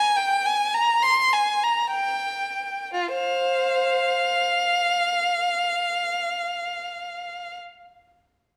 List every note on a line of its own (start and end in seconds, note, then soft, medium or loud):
0.00 0.16 G#5 medium
0.16 0.44 G5 medium
0.46 0.73 G#5 medium
0.74 1.02 A#5 medium
1.02 1.31 C6 medium
1.33 1.62 G#5 medium
1.63 1.93 A#5 medium
1.91 2.91 G5 medium
2.94 3.15 F4 medium
3.14 4.43 C5 medium
3.14 7.56 F5 medium